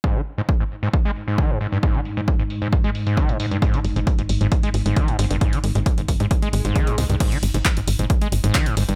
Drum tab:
CC |----------------|----------------|----------------|----------------|
HH |--o---o---oxxxox|xxoxxxoxxxoxxxox|xxoxxxoxxxoxxxox|xxoxxxoxxxoxxxox|
CP |----------------|----------------|----------------|----------------|
BD |o---o---o---o---|o---o---o---o---|o---o---o---o---|o---o-o-o---o---|

CC |x---------------|
HH |xxoxxxoxxxoxxxox|
CP |----x-------x---|
BD |o---o---o---o---|